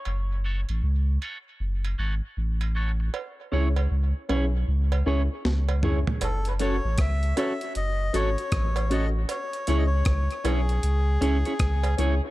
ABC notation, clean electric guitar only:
X:1
M:4/4
L:1/16
Q:"Swing 16ths" 1/4=78
K:F#dor
V:1 name="Clean electric guitar"
z2 [CFAc] z3 [CFAc] z3 [CFAc] z3 [CFAc] z | z2 [CEGc] z3 [CEGc] z3 [CEGc] z3 [CEGc] z | z2 [CFAc] z3 [CFAc] z3 [CFAc] z3 [CFAc] z | z2 [CEGc] z3 [CEGc] z3 [CEGc] [CEGc] z2 [CEGc] z |]